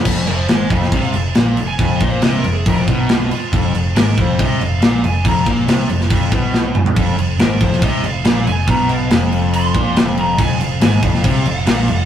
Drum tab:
CC |x-x-x-x-x-x-x-x-|x-x-x-x-x-x-x-x-|x-x-x-x-x-x-x-x-|x-x-x-x-x-x-----|
SD |----o--o----o---|----o-------o---|----o-------o---|----o--o----o---|
T2 |----------------|----------------|----------------|--------------o-|
FT |----------------|----------------|----------------|---------------o|
BD |o-----o-o-------|o-o-----o-o-----|o-----o-o-------|o-o-----o-o-----|

CC |x-x-x-x-x-x-x-x-|x-x-x-x-x-x-x-x-|x-x-x-x-x-x-x-x-|
SD |----o--o----o---|----o-------o---|----o--o----o---|
T2 |----------------|----------------|----------------|
FT |----------------|----------------|----------------|
BD |o-----o-o-------|o---------o-----|o-----o-o-------|